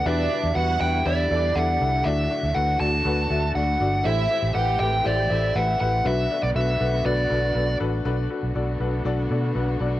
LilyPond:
<<
  \new Staff \with { instrumentName = "Lead electric guitar" } { \time 4/4 \key b \phrygian \tempo 4 = 120 e''4 fis''8 g''8 d''4 fis''4 | e''4 fis''8 a''4. fis''4 | e''4 fis''8 g''8 d''4 fis''8 fis''8 | e''8. d''16 e''4 d''4. r8 |
r1 | }
  \new Staff \with { instrumentName = "Violin section" } { \time 4/4 \key b \phrygian <d' d''>4 <fis' fis''>4 <e' e''>8 <d' d''>4 r8 | r1 | <e' e''>4 <g' g''>4 <g' g''>8 <e' e''>4 r8 | r1 |
r1 | }
  \new Staff \with { instrumentName = "Grand piano" } { \time 4/4 \key b \phrygian <d' e' g' b'>8 <d' e' g' b'>8 <d' e' g' b'>8 <d' e' g' b'>8 <d' e' g' d''>8 <d' e' g' a'>8 <d' e' g' a'>8 <d' e' g' a'>8 | <d' fis' a' d''>8 <d' fis' a' d''>8 <d' fis' a' b'>8 <d' fis' a' d''>8 <d' fis' a' b'>8 <d' fis' a' e''>8 <d' fis' a' d''>8 <d' fis' a' d''>8 | <e' g' a' c''>8 <e' g' a' c''>8 <e' g' a' b'>8 <e' g' a' b'>8 <e' g' a' c''>8 <e' g' a' c''>8 <e' g' a' b'>8 <e' g' a' b'>8 | <d' fis' a' b'>8 <d' fis' a' d''>8 <d' fis' a' b'>8 <d' fis' a' b'>8 <d' fis' a' b'>8 <d' fis' a' b'>8 <d' fis' a' b'>8 <d' fis' a' b'>8 |
<d' fis' a' b'>8 <d' fis' a' b'>8 <d' fis' a' d''>8 <d' fis' a' b'>8 <d' fis' a' d''>8 <d' fis' a' d''>8 <d' fis' a' b'>8 <d' fis' a' d''>8 | }
  \new Staff \with { instrumentName = "Grand piano" } { \clef bass \time 4/4 \key b \phrygian b,4. r2 r8 | a,4. r2 r8 | <a, e>4. r2 r8 | <b, fis>4. r2 r8 |
r1 | }
  \new Staff \with { instrumentName = "String section" } { \time 4/4 \key b \phrygian << { <g b e'>1 | <fis a fis'>1 | <c' g'>1 | <b fis'>1 |
<a b fis'>1 | } \\ { d1~ | d1 | e1 | d1 |
d1 | } >> }
  \new Staff \with { instrumentName = "Fingered electric bass" } { \clef bass \time 4/4 \key b \phrygian e,8 r16 e,16 e,8 e,8 e,8 e,8 e,8 c,8 | d,8 r16 d,16 d,8 d,8 d,8 d,8 d,8 g,,8 | a,,8 r16 a,,16 a,,8 a,,8 a,,8 a,,8 a,,8 a,,8 | b,,8 r16 b,,16 b,,8 b,,8 b,,8 b,,8 b,,8 a,,8 |
b,,8 r16 b,,16 b,,8 b,,8 b,,8 b,8 b,,8 b,,8 | }
>>